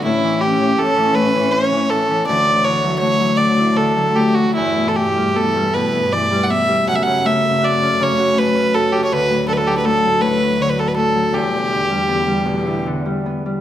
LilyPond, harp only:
\new Staff \with { instrumentName = "Harp" } { \clef bass \time 3/4 \key e \dorian \tempo 4 = 80 a,16 e16 cis'16 e16 a,16 e16 a,16 e16 cis'16 e16 a,16 e16 | d,16 a,16 d16 fis16 a16 fis16 a,16 e'16 d16 fis16 a16 fis16 | e,16 b,16 e16 g16 b16 g16 b,16 b16 e16 g16 b16 g16 | fis,16 cis16 a8 fis'16 cis'16 cis16 fis'16 a16 cis'16 fis'16 cis'16 |
d,16 a,16 d16 fis16 a16 fis16 a,16 fis'16 d16 fis16 a16 fis16 | e,16 b,16 d16 g16 b16 g16 b,16 e'16 d16 g16 b16 g16 | }